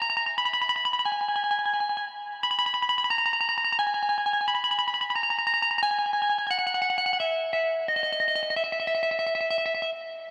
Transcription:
0.02 A#5
0.10 A#5
0.17 A#5
0.26 A#5
0.38 B5
0.45 B5
0.53 B5
0.62 B5
0.69 B5
0.76 B5
0.85 B5
0.93 B5
0.99 B5
1.05 G#5
1.12 G#5
1.21 G#5
1.28 G#5
1.36 G#5
1.44 G#5
1.51 G#5
1.59 G#5
1.66 G#5
1.74 G#5
1.80 G#5
1.89 G#5
1.97 G#5
2.43 B5
2.51 B5
2.59 B5
2.66 B5
2.74 B5
2.82 B5
2.89 B5
2.98 B5
3.04 B5
3.10 A#5
3.18 A#5
3.26 A#5
3.33 A#5
3.41 A#5
3.49 A#5
3.58 A#5
3.64 A#5
3.72 A#5
3.79 G#5
3.87 G#5
3.94 G#5
4.03 G#5
4.09 G#5
4.18 G#5
4.26 G#5
4.33 G#5
4.41 G#5
4.48 B5
4.55 B5
4.64 B5
4.71 B5
4.79 B5
4.88 B5
4.94 B5
5.01 B5
5.10 B5
5.16 A#5
5.23 A#5
5.30 A#5
5.38 A#5
5.47 A#5
5.54 A#5
5.62 A#5
5.71 A#5
5.78 A#5
5.83 G#5
5.91 G#5
5.99 G#5
6.06 G#5
6.13 G#5
6.22 G#5
6.30 G#5
6.38 G#5
6.47 F#5 G#5
6.59 F#5
6.67 F#5
6.74 F#5
6.82 F#5
6.90 F#5
6.98 F#5
7.06 F#5
7.13 F#5
7.20 E5
7.53 E5
7.88 D#5
7.96 D#5
8.03 D#5
8.12 D#5
8.20 D#5
8.28 D#5
8.36 D#5
8.50 D#5
8.56 E5
8.64 E5
8.72 E5
8.80 E5
8.87 E5
8.95 E5
9.03 E5
9.11 E5
9.19 E5
9.27 E5
9.35 E5
9.41 E5
9.51 E5
9.58 E5
9.66 E5
9.75 E5
9.82 E5

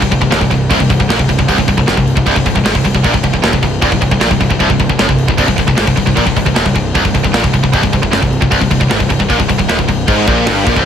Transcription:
0.01 C1 C2, kick
0.11 C1 C2, kick, crash
0.21 C1 C2, kick
0.31 D#1 D#2, snare, crash
0.41 C1 C2, kick
0.51 C1 C2, kick, crash
0.71 C1 C2, kick, crash
0.80 C1 C2, kick
0.89 C1 C2, kick, crash
1.00 C1 C2, kick
1.10 A#1 A#2, snare, crash
1.19 C1 C2, kick
1.29 C1 C2, kick, crash
1.39 C1 C2, kick
1.49 C1 C2, kick, crash
1.58 C1 C2, kick
1.68 C1 C2, kick, crash
1.78 C1 C2, kick
1.88 F#1 F#2, snare, crash
1.97 C1 C2, kick
2.07 crash
2.17 C1 C2, kick
2.27 C1 C2, kick, crash
2.36 C1 C2, kick
2.46 C1 C2, kick, crash
2.56 C1 C2, kick
2.65 G#1 G#2, snare, crash
2.75 C1 C2, kick
2.85 C1 C2, kick, crash
2.95 C1 C2, kick
3.04 A#1 A#2, kick, crash
3.14 C1 C2, kick
3.24 C1 C2, kick, crash
3.33 C1 C2, kick
3.43 D#1 D#2, snare, crash
3.53 C1 C2, kick
3.63 C1 C2, kick, crash
3.82 C1 C2, kick, crash
3.92 C1 C2, kick
4.01 C1 C2, kick, crash
4.11 C1 C2, kick
4.21 A#1 A#2, snare, crash
4.31 C1 C2, kick
4.40 C1 C2, kick, crash
4.51 C1 C2, kick
4.60 C1 C2, kick, crash
4.70 C1 C2, kick
4.79 C1 C2, kick, crash
4.89 C1 C2, kick
4.99 F#1 F#2, snare, crash
5.09 C1 C2, kick
5.18 crash
5.28 C1 C2, kick
5.38 C1 C2, kick, crash
5.48 C1 C2, kick
5.58 C1 C2, kick, crash
5.68 C1 C2, kick
5.77 G#1 G#2, snare, crash
5.87 C1 C2, kick
5.97 C1 C2, kick, crash
6.06 C1 C2, kick
6.16 A#1 A#2, kick, crash
6.27 C1 C2, kick
6.36 C1 C2, kick, crash
6.46 C1 C2, kick
6.56 D#1 D#2, snare, crash
6.66 C1 C2, kick
6.76 C1 C2, kick, crash
6.95 C1 C2, kick, crash
7.05 C1 C2, kick
7.15 C1 C2, kick, crash
7.24 C1 C2, kick
7.34 A#1 A#2, snare, crash
7.44 C1 C2, kick
7.54 C1 C2, kick, crash
7.64 C1 C2, kick
7.73 C1 C2, kick, crash
7.83 C1 C2, kick
7.93 C1 C2, kick, crash
8.03 C1 C2, kick
8.13 F#1 F#2, snare, crash
8.22 C1 C2, kick
8.33 crash
8.42 C1 C2, kick
8.51 C1 C2, kick, crash
8.61 C1 C2, kick
8.71 C1 C2, kick, crash
8.81 C1 C2, kick
8.91 G#1 G#2, snare, crash
9.00 C1 C2, kick
9.10 C1 C2, kick, crash
9.20 C1 C2, kick
9.30 A#1 A#2, kick, crash
9.40 C1 C2, kick
9.49 C1 C2, kick, crash
9.59 C1 C2, kick
9.69 D#1 D#2, snare, crash
9.79 C1 C2, kick
9.88 C1 C2, kick, crash
10.08 G#1 G#2, kick, crash
10.27 A#1 A#2, kick, crash
10.47 G1 G2, snare, crash
10.67 A#1 A#2, kick, crash
10.76 C1 C2, kick

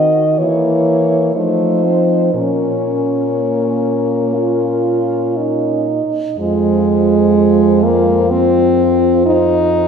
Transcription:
Already playing: D#3 C4 F#4 D#5
0.38 E3 A#3 E4 C#5
1.35 F3 A3 D#4 C5
1.84 C4
2.34 A#2 C#4 A#4
3.37 A#3
4.35 F4
5.37 D#4
6.38 F2 G#3 F4 C5
7.84 A#3
8.30 C4
9.26 D#4

